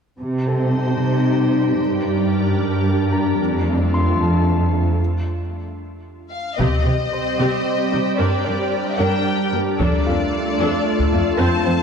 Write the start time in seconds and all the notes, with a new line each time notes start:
0.19 C3 G3 D#4 G4 C5
0.47 A4 A5
0.99 C3
1.77 G2 D4 A#4
2.59 G2
3.12 A#5
3.39 F2 A3 F4
3.94 C6
4.19 F2 A5
6.31 F5
6.58 C3 G3 C4 G4 C5 D#5, taiko
6.85 C3 C4 G4
7.13 C5
7.39 C3 C4 G4
7.92 C3 G3 D#4
8.18 G2 D4 A#4 D5
8.45 G2 D4 A#4 D5
8.99 G2 D4 A#4 G5
9.53 G2 A#3 G4
9.78 F2 A3 D4 F4 A4 D5, taiko
10.06 F2 D4 F4 A4 F5
10.60 F2 D4 A4
10.99 taiko
11.13 F2 A3 F4
11.38 F2 F3 C4 C5 A5
11.65 F2 C4 C5